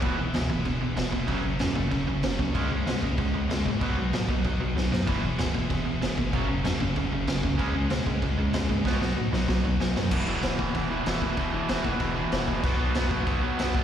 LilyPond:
<<
  \new Staff \with { instrumentName = "Distorted electric guitar" } { \clef bass \time 4/4 \key e \major \tempo 4 = 190 <e gis b e'>4. <e gis b e'>2~ <e gis b e'>8 | <fis, cis fis a cis'>4. <fis, cis fis a cis'>2~ <fis, cis fis a cis'>8 | <cis e gis cis'>4. <cis e gis cis'>2~ <cis e gis cis'>8 | <b, fis b dis'>4. <b, fis b dis'>2~ <b, fis b dis'>8 |
<e gis b e'>4. <e gis b e'>2~ <e gis b e'>8 | <fis, cis fis a cis'>4. <fis, cis fis a cis'>2~ <fis, cis fis a cis'>8 | <cis e gis cis'>4. <cis e gis cis'>2~ <cis e gis cis'>8 | <b, fis b dis'>4. <b, fis b dis'>2~ <b, fis b dis'>8 |
r1 | r1 | r1 | }
  \new Staff \with { instrumentName = "Overdriven electric guitar" } { \clef bass \time 4/4 \key e \major <e, b, e>8 <e, b,>8 <e, b,>8 <e, b,>8 <e, b,>8 <e, b,>8 <e, b,>8 <e, b,>8 | <fis, cis fis>8 <fis, cis>8 <fis, cis>8 <fis, cis>8 <fis, cis>8 <fis, cis>8 <fis, cis>8 <fis, cis>8 | <cis gis cis'>8 <cis gis>8 <cis gis>8 <cis gis>8 <cis gis>8 <cis gis>8 <cis gis>8 <cis gis>8 | <b, fis b>8 <b, fis>8 <b, fis>8 <b, fis>8 <b, fis>8 <b, fis>8 <b, fis>8 <b, fis>8 |
<e, b, e>8 <e, b,>8 <e, b,>8 <e, b,>8 <e, b,>8 <e, b,>8 <e, b,>8 <e, b,>8 | <fis, cis fis>8 <fis, cis>8 <fis, cis>8 <fis, cis>8 <fis, cis>8 <fis, cis>8 <fis, cis>8 <fis, cis>8 | <cis gis cis'>8 <cis gis>8 <cis gis>8 <cis gis>8 <cis gis>8 <cis gis>8 <cis gis>8 <cis gis>8 | <b, fis b>8 <b, fis>8 <b, fis>8 <b, fis>8 <b, fis>8 <b, fis>8 <b, fis>8 <b, fis>8 |
<e, b, e>8 <e, b, e>8 <e, b, e>8 <e, b, e>8 <e, b, e>8 <e, b, e>8 <e, b, e>8 <e, b, e>8 | <e, b, e>8 <e, b, e>8 <e, b, e>8 <e, b, e>8 <e, b, e>8 <e, b, e>8 <e, b, e>8 <e, b, e>8 | <b, fis b>8 <b, fis b>8 <b, fis b>8 <b, fis b>8 <b, fis b>8 <b, fis b>8 <b, fis b>8 <b, fis b>8 | }
  \new Staff \with { instrumentName = "Overdriven electric guitar" } { \clef bass \time 4/4 \key e \major <e, b, e>8 <e, b,>8 <e, b,>8 <e, b,>8 <e, b,>8 <e, b,>8 <e, b,>8 <e, b,>8 | <fis, cis fis>8 <fis, cis>8 <fis, cis>8 <fis, cis>8 <fis, cis>8 <fis, cis>8 <fis, cis>8 <fis, cis>8 | <cis gis cis'>8 <cis gis>8 <cis gis>8 <cis gis>8 <cis gis>8 <cis gis>8 <cis gis>8 <cis gis>8 | <b, fis b>8 <b, fis>8 <b, fis>8 <b, fis>8 <b, fis>8 <b, fis>8 <b, fis>8 <b, fis>8 |
<e, b, e>8 <e, b,>8 <e, b,>8 <e, b,>8 <e, b,>8 <e, b,>8 <e, b,>8 <e, b,>8 | <fis, cis fis>8 <fis, cis>8 <fis, cis>8 <fis, cis>8 <fis, cis>8 <fis, cis>8 <fis, cis>8 <fis, cis>8 | <cis gis cis'>8 <cis gis>8 <cis gis>8 <cis gis>8 <cis gis>8 <cis gis>8 <cis gis>8 <cis gis>8 | <b, fis b>8 <b, fis>8 <b, fis>8 <b, fis>8 <b, fis>8 <b, fis>8 <b, fis>8 <b, fis>8 |
<e, b, e>8 <e, b, e>8 <e, b, e>8 <e, b, e>8 <e, b, e>8 <e, b, e>8 <e, b, e>8 <e, b, e>8 | <e, b, e>8 <e, b, e>8 <e, b, e>8 <e, b, e>8 <e, b, e>8 <e, b, e>8 <e, b, e>8 <e, b, e>8 | <b, fis b>8 <b, fis b>8 <b, fis b>8 <b, fis b>8 <b, fis b>8 <b, fis b>8 <b, fis b>8 <b, fis b>8 | }
  \new Staff \with { instrumentName = "Sub bass" } { \clef bass \time 4/4 \key e \major e,,8 e,,8 cis,8 e,,8 e,,8 e,,8 e,,8 f,,8 | fis,,8 fis,,8 e,8 fis,,8 fis,,8 fis,,8 fis,,8 cis,8 | cis,8 cis,8 b,8 cis,8 cis,8 cis,8 cis,8 gis,8 | b,,8 b,,8 a,8 b,,8 b,,8 b,,8 b,,8 fis,8 |
e,,8 e,,8 cis,8 e,,8 e,,8 e,,8 e,,8 gis,,8 | fis,,8 fis,,8 e,8 fis,,8 fis,,8 fis,,8 fis,,8 cis,8 | cis,8 cis,8 b,8 cis,8 cis,8 cis,8 cis,8 gis,8 | b,,8 b,,8 a,8 b,,8 b,,8 b,,8 b,,8 fis,8 |
e,,8 e,,8 e,,8 e,,8 e,,4 e,,8 e,,8 | e,,8 e,,8 e,,8 e,,8 e,,4 e,,8 e,,8 | b,,8 b,,8 b,,8 b,,8 b,,4 b,,8 b,,8 | }
  \new DrumStaff \with { instrumentName = "Drums" } \drummode { \time 4/4 <cymc bd>4 <cymc sn>8 bd8 <cymc bd>4 <cymc sn>8 bd8 | <cymc bd>4 <cymc sn>8 bd8 <cymc bd>4 <cymc sn>8 bd8 | <cymc bd>4 <cymc sn>8 bd8 <cymc bd>4 <cymc sn>8 bd8 | <cymc bd>4 <cymc sn>8 bd8 <cymc bd>4 sn8 sn8 |
<cymc bd>4 <cymc sn>8 bd8 <cymc bd>4 <cymc sn>8 bd8 | <cymc bd>4 <cymc sn>8 bd8 <cymc bd>4 <cymc sn>8 bd8 | <cymc bd>4 <cymc sn>8 bd8 <cymc bd>4 <cymc sn>8 bd8 | <bd sn>8 sn8 r8 sn8 <bd sn>4 sn8 sn8 |
<cymc bd>4 <cymc sn>8 bd8 <cymc bd>4 <cymc sn>8 bd8 | <cymc bd>4 <cymc sn>8 bd8 <cymc bd>4 <cymc sn>8 bd8 | <cymc bd>4 <cymc sn>8 bd8 <cymc bd>4 <cymc sn>8 bd8 | }
>>